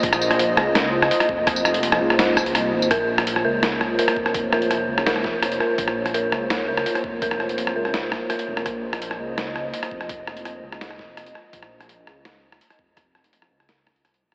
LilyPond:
<<
  \new Staff \with { instrumentName = "Analog synth pad" } { \time 4/4 \key bes \minor \tempo 4 = 167 << { ees''1~ | ees''1 | des''1~ | des''1~ |
des''1~ | des''1 | ees''1~ | ees''1~ |
ees''1~ | ees''1 | } \\ { <bes f' c''>1~ | <bes f' c''>1 | <bes f' c''>1~ | <bes f' c''>1~ |
<bes f' c''>1~ | <bes f' c''>1~ | <bes f' c''>1~ | <bes f' c''>1~ |
<bes f' c''>1~ | <bes f' c''>1 | } >> }
  \new Staff \with { instrumentName = "Synth bell" } { \time 4/4 \key bes \minor r1 | r1 | bes'8 r4 bes'4. bes'8 r8 | r8 bes'4. bes'8 r4 bes'8~ |
bes'4 bes'8 r4 bes'4. | bes'8 r4 bes'4. bes'8 r8 | r1 | r1 |
r1 | r1 | }
  \new Staff \with { instrumentName = "Detuned saw bass" } { \clef bass \time 4/4 \key bes \minor bes,,4. des,4. r8 f,,8~ | f,,4. des,4. c,8 aes,,8 | bes,,4. des,4. r8 f,,8~ | f,,4. des,4 f,,4 r8 |
bes,,4. des,4. r8 f,,8~ | f,,4. des,4 r4 f,,8 | bes,,4. des,4. r8 f,,8~ | f,,4. des,4 f,,4 r8 |
bes,,4. des,4. r8 f,,8~ | f,,4. des,4. c,8 aes,,8 | }
  \new DrumStaff \with { instrumentName = "Drums" } \drummode { \time 4/4 <hh bd>16 <ss tamb>16 tamb16 <hh ss>16 hh8 ss8 <hh ss sn>8. ss16 hh16 <hh ss>16 bd8 | <hh bd ss>16 tamb16 <ss tamb>16 hh16 hh16 ss8 ss16 <hh sn>8 <bd ss tamb>16 hh16 <hh ss>8. tamb16 | <hh bd ss>8. <hh ss>16 hh16 ss8. <hh ss sn>8 ss8 hh16 <hh ss>16 bd16 ss16 | <hh bd>8 ss16 hh16 <hh ss>8. ss16 <hh sn>16 ss16 <bd sn>8 <hh ss>16 hh16 ss8 |
<hh bd>16 ss8 <hh ss>16 hh8 ss8 <hh ss sn>8. ss16 hh16 <hh ss>16 bd8 | <hh bd>16 ss16 ss16 hh16 hh16 ss8 ss16 <hh sn>8 <bd ss sn>8 <hh ss>16 hh8 ss16 | <hh bd ss>8. <hh ss>16 hh16 ss8. <hh ss sn>8 ss8 hh16 <hh ss>16 bd16 ss16 | <hh bd>8 ss16 hh16 <hh ss>8. ss16 <hh sn>16 ss16 <bd sn>8 <hh ss>16 hh16 ss8 |
<hh bd>16 ss8 <hh ss>16 hh8 ss8 <hh ss sn>8. ss16 hh16 <hh ss>16 bd8 | <hh bd ss>8 ss16 hh16 hh16 ss8 ss16 <hh sn>8 <bd ss sn>16 hh16 <hh ss>16 hh8. | }
>>